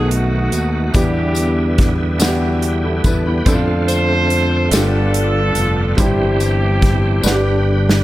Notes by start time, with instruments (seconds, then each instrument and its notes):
Already playing: fingered electric bass B1, grand piano B2 A3 B3 D#4 F#4, tonewheel organ D#3 A3 B3 F#4
0.07 horn section A3 D#4 F#4
0.11 closed hi-hat
0.52 fingered electric bass D#2, closed hi-hat, tambourine
0.91 fingered electric bass E2, tonewheel organ D3 G3 D#4, grand piano E3 B3 D4 E4, horn section B3 D4 G4, kick, closed hi-hat, tambourine
0.95 tonewheel organ B3, grand piano G4
1.01 tonewheel organ E4
1.35 closed hi-hat, tambourine
1.78 kick, snare, closed hi-hat
2.19 grand piano B3 D4 E4 F#4, snare, closed hi-hat, tambourine
2.28 grand piano G4
2.61 tonewheel organ E4 G4, closed hi-hat
2.84 grand piano E4 A4
3.04 fingered electric bass E2, grand piano E4 B4, tonewheel organ A4, kick, closed hi-hat, tambourine
3.26 grand piano B3 E4, tonewheel organ G4 B4
3.45 fingered electric bass F2, tonewheel organ D3 A3 C4 F4, grand piano C4 D4 E4 A4, kick, closed hi-hat, tambourine
3.54 grand piano F4
3.86 horn section A4 C5, closed hi-hat, tambourine
4.30 closed hi-hat
4.70 fingered electric bass G1, grand piano G2 A3 D4 F4, tonewheel organ D3 G3 B3 E4, horn section D4 F4 A4, snare, closed hi-hat, tambourine
4.74 grand piano B3 G4, tonewheel organ F4
5.14 closed hi-hat
5.55 fingered electric bass F1, closed hi-hat, tambourine
5.96 fingered electric bass G1, grand piano G2 G3 C4 E4 G4, tonewheel organ E3 G3 C4 G4, horn section C4 E4 G4, kick, closed hi-hat, tambourine
6.40 closed hi-hat, tambourine
6.82 kick, snare, closed hi-hat
7.21 fingered electric bass G1, grand piano G2 G3 B4, tonewheel organ D3 G3 G4 B4, tambourine
7.25 grand piano D4 F#4, snare
7.32 grand piano G4
7.89 snare